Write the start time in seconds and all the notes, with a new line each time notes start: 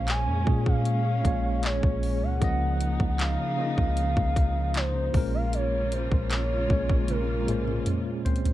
Already playing: A#1 A#2 G#3 A#3 C#4 C5
0.08 G#5, clap, closed hi-hat
0.27 F2
0.45 A#2 G#3 C#4, kick
0.49 G#4
0.66 F5, kick
0.85 closed hi-hat
1.23 A#1 A#2 G#3 C#4, kick, closed hi-hat
1.27 C#5
1.63 C#5, clap, closed hi-hat
1.83 A#1, kick
2.03 open hi-hat
2.22 C#2 F#5
2.40 C#2 C#3 F3 A#3 D#4, kick, closed hi-hat
2.44 D#5
2.81 closed hi-hat
3.00 C#2, kick
3.13 F#5
3.19 F5, clap, closed hi-hat
3.56 C#3 A#3 F4
3.61 D#5
3.78 C#2 F5, kick
3.97 closed hi-hat
4.17 C#2, kick
4.36 kick, closed hi-hat
4.74 C5, clap, closed hi-hat
5.12 A#1 A#2 C#3 G#3 A#3 C#4 F4, kick, open hi-hat
5.17 A#4
5.34 F5
5.53 C#5, closed hi-hat
5.92 C5, closed hi-hat
6.12 A#1, kick
6.31 C#5, clap, closed hi-hat
6.68 A#1 A#2 G#3 C#4, kick
6.73 C#5
6.89 kick
7.08 A#4, closed hi-hat, high tom
7.46 A#2 G#3 C#4, closed hi-hat, mid tom
7.51 C5
7.67 mid tom
7.86 closed hi-hat, mid tom
8.25 C4 C5, closed hi-hat, floor tom, open hi-hat
8.36 closed hi-hat
8.45 closed hi-hat, floor tom